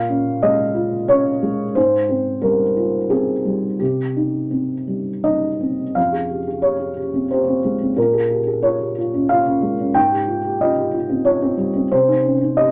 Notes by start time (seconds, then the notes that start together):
Already playing: A#2 F5
0.09 C#4
0.42 G#3 D#5
0.74 F4
1.08 C#4 C#5
1.43 G#3
1.75 G#2 C5
2.09 C4
2.42 G3 A#4
2.77 F4
3.10 C4 G#4
3.45 G3
3.80 C3 G4
4.16 D#4
4.51 C4
4.87 G3
5.24 D#4 D#5
5.60 C4
5.95 F2 F5
6.12 G#4
6.30 G4
6.47 G#4
6.62 G4 C#5
6.80 G#4
6.97 G4
7.14 C4
7.31 G4 C5
7.48 C4
7.65 G#3
7.81 C4
7.96 A#2 A#4
8.13 G#4
8.31 G4
8.47 G#4
8.63 F4 C#5
8.80 G4
8.98 F4
9.14 C#4
9.29 F4 F5
9.46 C#4
9.63 G#3
9.80 C#4
9.94 G#2 G5
10.12 G4
10.28 F4
10.44 G4
10.61 F4 D#5
10.78 G4
10.94 F4
11.09 C4
11.25 F4 C#5
11.42 C4
11.57 G3
11.76 C4
11.91 C3 C5
12.08 D#4
12.25 C#4
12.41 D#4
12.57 G4 D#5